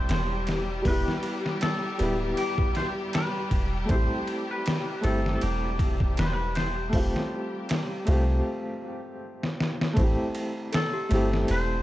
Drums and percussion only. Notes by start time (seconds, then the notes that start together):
0.09 snare, ride
0.47 snare, ride
0.85 kick, open hi-hat
1.08 snare
1.23 ride
1.46 snare
1.61 snare, ride
1.99 ride
2.37 ride
2.58 kick
2.75 snare, ride
3.13 snare, ride
3.51 kick, ride
3.89 kick, ride
4.27 ride
4.66 snare, ride
5.04 ride
5.26 snare
5.41 ride
5.79 kick, ride
6.00 kick
6.17 snare, ride
6.55 snare, ride
6.93 kick, open hi-hat
7.16 snare
7.69 snare, ride
8.07 ride
9.43 snare
9.61 snare
9.81 snare
9.97 kick, ride
10.35 ride
10.73 snare, ride
11.11 ride
11.33 snare
11.48 ride